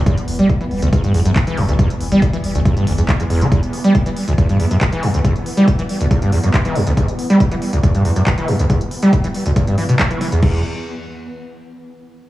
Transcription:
Already playing: E3 B3
0.06 E2, kick, closed hi-hat
0.18 E1, closed hi-hat
0.28 E1, open hi-hat
0.39 E1 G3, closed hi-hat
0.50 kick, closed hi-hat
0.61 E1 E3, closed hi-hat
0.71 E1, open hi-hat
0.82 E1 D2, closed hi-hat
0.93 E2, kick, closed hi-hat
1.04 E1 G2, closed hi-hat
1.14 E1 E2, open hi-hat
1.26 E1 F#2, closed hi-hat
1.36 kick, clap, closed hi-hat
1.47 E1 E3, closed hi-hat
1.57 E1 E2, open hi-hat
1.69 E1 D2, closed hi-hat
1.79 E2, kick, closed hi-hat
1.90 E1, closed hi-hat
2.01 E1, open hi-hat
2.12 E1 G3, closed hi-hat
2.22 kick, closed hi-hat
2.33 E1 E3, closed hi-hat
2.44 E1, open hi-hat
2.55 E1 D2, closed hi-hat
2.65 E2, kick, closed hi-hat
2.77 E1 G2, closed hi-hat
2.87 E1 D2, open hi-hat
2.98 E1 E2, closed hi-hat
3.09 kick, clap, closed hi-hat
3.20 E1 E2, closed hi-hat
3.30 E1 E2, open hi-hat
3.41 E1 E3, closed hi-hat
3.52 E2, kick, closed hi-hat
3.63 closed hi-hat
3.73 open hi-hat
3.85 G3, closed hi-hat
3.95 kick, closed hi-hat
4.06 E3, closed hi-hat
4.17 open hi-hat
4.28 D2, closed hi-hat
4.38 E2, kick, closed hi-hat
4.49 G2, closed hi-hat
4.60 E2, open hi-hat
4.71 F#2, closed hi-hat
4.81 kick, clap, closed hi-hat
4.92 E3, closed hi-hat
5.03 E2, open hi-hat
5.14 D2, closed hi-hat
5.24 E2, kick, closed hi-hat
5.36 closed hi-hat
5.46 open hi-hat
5.57 G3, closed hi-hat
5.68 kick, closed hi-hat
5.79 E3, closed hi-hat
5.89 open hi-hat
6.00 D2, closed hi-hat
6.11 E2, kick, closed hi-hat
6.22 G2, closed hi-hat
6.32 E2, open hi-hat
6.44 F#2, closed hi-hat
6.54 kick, clap, closed hi-hat
6.65 E3, closed hi-hat
6.75 E2, open hi-hat
6.87 D2, closed hi-hat
6.97 E2, kick, closed hi-hat
7.08 closed hi-hat
7.19 open hi-hat
7.30 G3, closed hi-hat
7.40 kick, closed hi-hat
7.51 E3, closed hi-hat
7.62 open hi-hat
7.73 D2, closed hi-hat
7.83 E2, kick, closed hi-hat
7.95 G2, closed hi-hat
8.05 E2, open hi-hat
8.16 F#2, closed hi-hat
8.27 kick, clap, closed hi-hat
8.38 E3, closed hi-hat
8.48 E2, open hi-hat
8.59 D2, closed hi-hat
8.70 E2, kick, closed hi-hat
8.81 closed hi-hat
8.91 open hi-hat
9.02 G3, closed hi-hat
9.13 kick, closed hi-hat
9.24 E3, closed hi-hat
9.34 open hi-hat
9.46 D2, closed hi-hat
9.56 E2, kick, closed hi-hat
9.67 G2, closed hi-hat
9.78 E3, open hi-hat
9.89 B2, closed hi-hat
9.99 kick, clap, closed hi-hat
10.11 E3, closed hi-hat
10.21 E3, open hi-hat
10.32 E2, closed hi-hat
10.42 E2, kick, crash

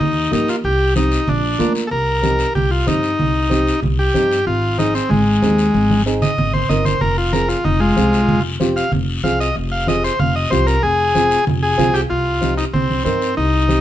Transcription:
Already playing: D#4
0.01 D#2, high conga, low conga, long guiro
0.31 G2 A#3 D#4 G4, high conga, short guiro
0.48 F4, short guiro
0.64 C2 G4, high conga, long guiro
0.96 C4 D#4 G4, high conga, short guiro
1.12 short guiro
1.28 A#1 D4, high conga, low conga, long guiro
1.59 D2 A#3 D4 F4, high conga, short guiro
1.75 short guiro
1.87 A4
1.91 C2 A#4, high conga, long guiro
2.22 C4 D#4 G4, high conga, short guiro
2.39 short guiro
2.55 C2 G4, high conga, low conga, long guiro
2.71 F4
2.87 G2 C4 D#4 G4, high conga, low conga, short guiro
3.03 short guiro
3.19 C2, high conga, low conga, long guiro
3.50 C4 D#4 G4, high conga, short guiro
3.67 short guiro
3.83 C2, high conga, low conga, long guiro
3.99 G4
4.14 G2 C4 D#4 G4, high conga, short guiro
4.32 short guiro
4.47 G#1 F4, high conga, long guiro
4.78 C4 D#4 G#4, high conga, short guiro
4.95 C4, short guiro
5.09 G#1 G#3, high conga, low conga, long guiro
5.42 D#2 C4 D#4 G#4, high conga, short guiro
5.58 short guiro
5.74 G#1, high conga, long guiro
5.90 high conga
6.06 C4 D#4 G#4, short guiro
6.22 D#5, low conga, short guiro
6.38 G#1, low conga, long guiro
6.54 C5, low conga
6.69 G1 C4 D#4 A#4 D#5, low conga, short guiro
6.85 C5, low conga, short guiro
7.01 F1 A#4, high conga, low conga, long guiro
7.18 F4
7.33 C4 F4 G#4 A#4, high conga, short guiro
7.48 F4, short guiro
7.64 F1 D#4, high conga, low conga, long guiro
7.80 G#3 F4
7.96 C2 C4 F4 G#4, high conga, short guiro
8.13 short guiro
8.28 F1, high conga, low conga, long guiro
8.60 C4 F4 G4, high conga, short guiro
8.76 F5, short guiro
8.92 F1, high conga, low conga, long guiro
9.24 C2 C4 F4 G#4 F5, high conga, short guiro
9.40 D#5, short guiro
9.56 F1, high conga, long guiro
9.72 F5
9.87 C4 F4 G#4 D#5, high conga, short guiro
10.04 C5, short guiro
10.19 F1 F5, high conga, low conga, long guiro
10.36 D#5
10.50 C2 C4 F4 G4 C5, high conga, short guiro
10.67 A#4, short guiro
10.83 F1 G#4, high conga, long guiro
11.15 C4 F4 G#4, high conga, short guiro
11.31 short guiro
11.47 F1, high conga, low conga, long guiro
11.63 G#4
11.78 C2 C4 F4 G#4, high conga, low conga, short guiro
11.94 G4, short guiro
12.10 C2 F4, long guiro
12.41 C4 D#4 G4, high conga, short guiro
12.58 D#4, short guiro
12.73 C2 C4, low conga, long guiro
12.90 high conga
13.05 G2 C4 D#4 A#4, high conga, short guiro
13.22 short guiro
13.37 C2 D#4, long guiro
13.68 C4 D#4 G4, high conga, short guiro

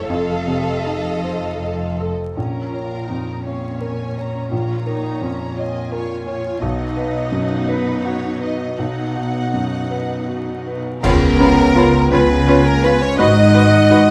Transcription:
Already playing: E3 E4 A4 C#5 E5
0.08 F1 F2 A4 D#5 F5
0.47 C3
0.86 D#4
1.24 C5
1.62 D#5
2.00 A4
2.36 A#1 A#2 C#4 A#4 A#5
2.72 F4 C#5
3.09 F2 D#4
3.45 C#4 C#5 F5
3.81 A#4 G#5
4.17 C#5 A#5
4.51 A#1 F4 C#5 A#5
4.86 D#4 A#4
5.21 F2 C#4
5.57 F4 C#5 D#5 G#5
5.92 A#4 C#5
6.26 C#5
6.61 B1 B2 D#4 D#5 F#5
6.97 B4
7.32 F#2
7.68 B4
8.05 F#4 C#5
8.40 B4 D#5
8.78 B1 D#4 D#5 F#5
9.16 F#4
9.54 F#2
9.91 B4
10.28 F#4
10.66 B4
11.03 C#2 C#3 B3 C#4 F4 A#4 F5 B5, concert bass drum, crash
11.39 B3 C#4 F4 F5 B5
11.75 B3 C#4 F4 F5 B5
12.11 C#2 C#3 B3 C#4 F4 B4 F5 G#5 B5
12.47 C#4 F4 B4 C#5 F5 B5
12.65 A#3 A#4
12.83 B3 C#4 F4 B4 F5 B5
13.01 C#4 C#5
13.18 G#1 G#2 D#4 F#4 B4 D#5 F#5 B5
13.54 D#4 F#4 B4 F#5 B5
13.89 D#4 F#4 B4 F#5 B5

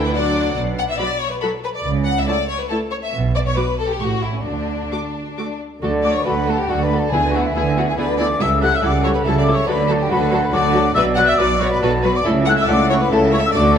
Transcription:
Already playing: D2 D3 E3 E4 G5
0.05 B4
0.13 F#3 D4 D5 F#5
0.56 B1 B2
0.79 F#5
0.90 E5
0.99 F#3 F#4 D5 B5
1.20 C#5
1.31 B4
1.40 F#3 F#4 A4 B5
1.63 B4
1.75 D5
1.84 C#2 C#3
2.05 F#5
2.18 E5
2.27 A3 E4 D5 A5
2.48 C#5
2.60 B4
2.69 A3 E4 A4 A5
2.90 C#5
3.03 E5
3.13 B1 B2
3.35 D5
3.46 C#5
3.55 F#3 F#4 B4 D6
3.78 A4
3.89 G4
4.00 A1 A2 A3 F#4 G4 C#6
4.23 E4
4.34 C#4
4.44 D2 D3 D4
4.91 A3 F#4 D6
5.37 A3 F#4 D6
5.81 D2 D3 F#3 A3 F#4 A4 D5
6.03 A3 F#4 A4 D5 D6
6.14 C#5 C#6
6.24 D2 D3 A3 F#4 A4 B4 F#5 B5
6.47 A3 F#4 A4 A5
6.57 G4 G5
6.67 D2 D3 F#3 A3 F#4 A4 D5 F#5
6.84 B4 B5
6.91 A3 F#4 A4
6.97 A4 A5
7.11 D2 D3 E3 B3 E4 G#4 B4 G#5
7.32 B3 E4 F#4 G#4 F#5
7.43 E4 E5
7.53 D2 D3 E3 B3 E4 G#4 B4 E5
7.58 G#5
7.77 B3 E4 F#4 G#4 F#5
7.88 G#4 G#5
7.96 D2 D3 E3 B3 E4 G#4 B4 D5 B5
8.18 B3 E4 G#4 D5 D6
8.39 C#2 C#3 G3 E4 A4 E5 E6
8.61 G3 E4 A4 F#5 F#6
8.73 E5 E6
8.82 C#2 C#3 G3 E4 A4 D5 F#5
8.86 D6
9.03 G3 E4 A4 C#5
9.07 C#6
9.14 B4
9.19 B5
9.23 C#2 C#3 G3 E4 A4 E5
9.29 A5
9.38 D5
9.43 D6
9.47 G3 E4 A4
9.51 C#5
9.56 C#6
9.67 D2 D3 F#3 F#4 A4 B4 D5 B5
9.87 F#3 F#4 A4
9.92 A5
9.99 G4 G5
10.09 D2 D3 F#3 F#4 A4 B4 F#5 B5
10.31 F#3 F#4 A4 A5
10.41 B4 B5
10.52 D2 D3 F#3 F#4 A4 D5 D6
10.74 F#3 F#4 A4
10.94 B1 B2 F#3 F#4 B4 D5 E5 E6
11.15 F#3 F#4 B4 F#5 F#6
11.26 E5 E6
11.37 B1 B2 F#3 F#4 B4 D5 D6
11.60 F#3 F#4 B4 C#5 C#6
11.71 B4 B5
11.80 B1 B2 F#3 F#4 A4 B4 A5
12.03 F#3 F#4 B4 B5
12.14 D5 D6
12.24 C#2 C#3 A3 E4 A4 E5
12.46 A3 E4 A4 F#5 F#6
12.57 E5 E6
12.67 C#2 C#3 A3 E4 A4 D5 F#5
12.72 D6
12.90 A3 E4 A4 C#5 C#6
13.00 B4 B5
13.11 C#2 C#3 A3 E4 A4 E5 A5
13.32 A3 E4 A4 C#5 C#6
13.42 E5 E6
13.52 D2 D3 A3 F#4 A4 D5 D6

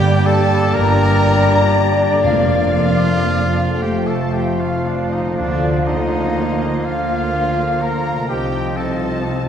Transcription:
Already playing: G1 G2 G3 A#3 D4 G4 D5 G5
0.25 A4 A5
0.72 G1 G2 A#4 A#5
1.22 G3 D4
2.07 F2
2.12 A#3
2.16 F4
2.21 F1 F2 F3 A#3 D4 D5 F5
2.25 A#3 F4 F5
2.76 A#3 D4
3.64 F2
3.68 A3
3.72 F4
3.77 F1 F2 A3 F4 F5 G5
3.82 A3 F4 G4 F5 G5
4.06 A4 A5
4.31 A3 F4 G4 G5
4.58 F4 F5
4.84 D4 D5
5.10 D#4 D#5
5.19 D3
5.24 A#3 F4
5.33 D3 A#3 F4 D5 F5
5.37 D2 A#3 D4
5.84 A#3 D#4 F4 D#5
6.82 D2 D3 A#3 F4 F5
7.32 A#3 F4
7.81 A#4 A#5
8.12 C3
8.16 C4
8.21 F4
8.25 C3 D#5 G5
8.29 C2 F3 C4 D#4 G4 G5
8.76 D#4 F4 A4 A5

